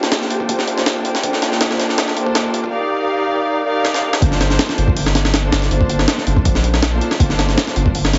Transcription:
Already playing: string section A#3 D4 F4 A4 C5, synth texture G4 G5
0.03 snare
0.12 snare, closed hi-hat
0.22 snare
0.30 closed hi-hat
0.40 kick
0.49 kick, closed hi-hat
0.59 snare
0.67 string section A#3 D4 F4 A4 C5, closed hi-hat
0.78 snare
0.86 snare, closed hi-hat
1.05 closed hi-hat
1.15 snare
1.23 string section A#3 D4 F4 A4 C5, kick, closed hi-hat
1.33 snare
1.42 snare, closed hi-hat
1.52 snare
1.61 snare, closed hi-hat
1.71 snare
1.80 snare, closed hi-hat
1.89 snare
1.98 snare, closed hi-hat
2.08 snare
2.17 string section A#3 D4 F4 A4 C5, closed hi-hat
2.27 kick
2.35 snare, closed hi-hat
2.54 closed hi-hat
2.64 kick
2.73 string section D#4 G4 A#4 D5 F5
3.66 string section D#4 G4 A#4 D5 F5
3.85 snare
3.94 snare
4.13 snare
4.22 sub bass G1, string section A#3 D4 F4 A4 C5, kick, closed hi-hat
4.32 snare
4.41 snare, closed hi-hat
4.50 snare
4.59 snare, closed hi-hat
4.69 snare
4.78 sub bass G1, closed hi-hat
4.88 kick
4.97 open hi-hat
5.06 snare
5.15 snare, closed hi-hat
5.25 snare
5.34 snare, closed hi-hat
5.43 string section A#3 D4 F4 A4 C5
5.52 sub bass G1, snare, closed hi-hat
5.62 snare
5.70 sub bass G1, string section A#3 D4 F4 A4 C5, closed hi-hat
5.81 kick
5.89 closed hi-hat
5.99 snare
6.08 snare, closed hi-hat
6.18 snare
6.27 sub bass G1, closed hi-hat
6.37 kick
6.45 sub bass A#1, kick, closed hi-hat
6.55 snare
6.64 closed hi-hat
6.74 snare
6.83 snare, closed hi-hat
6.92 string section A#3 D4 F4 A4 C5
7.01 closed hi-hat
7.11 snare
7.19 sub bass G1, string section A#3 D4 F4 A4 C5, kick, closed hi-hat
7.30 snare
7.39 snare, closed hi-hat
7.49 snare
7.58 snare, closed hi-hat
7.67 snare
7.76 sub bass G1, closed hi-hat
7.86 kick
7.95 open hi-hat
8.05 snare
8.13 snare, closed hi-hat

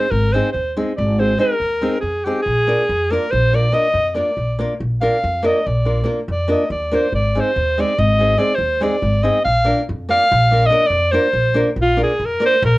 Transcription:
Already playing: alto saxophone C5
0.11 upright bass G#1, alto saxophone A#4
0.33 nylon-string guitar G#3 C4 D#4 G#4, alto saxophone C5
0.52 upright bass D#2, alto saxophone C5
0.76 nylon-string guitar G#3 C4 D#4 G#4
0.97 upright bass G#1, alto saxophone D5
1.18 nylon-string guitar G#3 C4 D#4 G#4, alto saxophone C5
1.38 nylon-string guitar G#3 C4 D#4 G#4, alto saxophone A#4
1.60 upright bass D#2
1.81 nylon-string guitar G#3 C4 D#4 G#4
2.01 upright bass F2, alto saxophone G#4
2.25 nylon-string guitar G#3 C4 D#4 G#4, alto saxophone G4
2.42 upright bass A#1, alto saxophone G#4
2.67 nylon-string guitar A#3 D4 F4 A#4
2.89 upright bass F2
3.10 nylon-string guitar A#3 D4 F4 A#4, alto saxophone A#4
3.31 upright bass A#1, alto saxophone C5
3.53 nylon-string guitar A#3 D4 F4 A#4, alto saxophone D5
3.72 nylon-string guitar A#3 D4 F4 A#4, alto saxophone D#5
3.94 upright bass F2
4.10 alto saxophone D#5
4.15 nylon-string guitar A#3 D4 F4 A#4, alto saxophone D5
4.37 upright bass A#1
4.59 nylon-string guitar A#3 D4 F4 A#4
4.81 upright bass A#1
5.01 nylon-string guitar A#3 D4 F4 A#4, alto saxophone F5
5.24 upright bass F2
5.43 nylon-string guitar A#3 D4 F4 A#4, alto saxophone D#5
5.67 upright bass A#1, alto saxophone D5
5.85 nylon-string guitar A#3 D4 F4 A#4
6.04 nylon-string guitar A#3 D4 F4 A#4
6.28 upright bass F2, alto saxophone D5
6.48 nylon-string guitar A#3 D4 F4 A#4, alto saxophone D#5
6.70 upright bass D#2, alto saxophone D5
6.91 nylon-string guitar A#3 D4 F4 A#4, alto saxophone C5
7.12 upright bass G#1, alto saxophone D5
7.35 nylon-string guitar G#3 C4 D#4 G#4
7.40 alto saxophone C5
7.56 upright bass D#2
7.78 nylon-string guitar G#3 C4 D#4 G#4, alto saxophone D5
7.98 upright bass G#1, alto saxophone D#5
8.19 nylon-string guitar G#3 C4 D#4 G#4
8.38 nylon-string guitar G#3 C4 D#4 G#4, alto saxophone D5
8.55 upright bass D#2, alto saxophone C5
8.81 nylon-string guitar G#3 C4 D#4 G#4, alto saxophone D5
9.02 upright bass G#1
9.23 nylon-string guitar G#3 C4 D#4 G#4, alto saxophone D#5
9.44 upright bass A#1, alto saxophone F5
9.64 nylon-string guitar A#3 D4 F4 A#4
9.89 upright bass F2
10.08 nylon-string guitar A#3 D4 F4 A#4, alto saxophone F5
10.31 upright bass A#1
10.51 nylon-string guitar A#3 D4 F4 A#4
10.66 nylon-string guitar A#3, alto saxophone D#5
10.70 nylon-string guitar D4 F4 A#4
10.87 upright bass F2, alto saxophone D5
11.11 nylon-string guitar A#3 D4 F4 A#4, alto saxophone C5
11.33 upright bass A#1
11.54 nylon-string guitar A#3 D4 F4 A#4
11.76 upright bass A#1
11.82 alto saxophone F4
11.97 nylon-string guitar A#3 D4 F4 A#4
12.03 alto saxophone G#4
12.20 upright bass F2
12.26 alto saxophone A#4
12.40 nylon-string guitar A#3 D4 F4 A#4
12.46 alto saxophone C5
12.62 upright bass A#1, alto saxophone A#4

